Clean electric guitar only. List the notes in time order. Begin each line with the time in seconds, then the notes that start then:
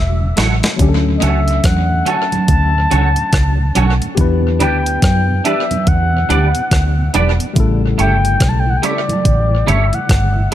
0.37 A3 E4 F#4 C#5
1.21 C#4 F#4 A4 C#5
2.06 C#4 F#4 A4 C#5
2.91 C#4 F#4 A4 C#5
3.75 C#4 F#4 A4 C#5
4.60 D4 G4 B4 D5
5.44 D4 G4 B4 D5
6.29 D4 G4 B4 D5
7.14 D4 G4 B4 D5
7.98 A3 E4 G4 C#5
8.82 A3 E4 G4 C#5
9.67 A3 E4 G4 C#5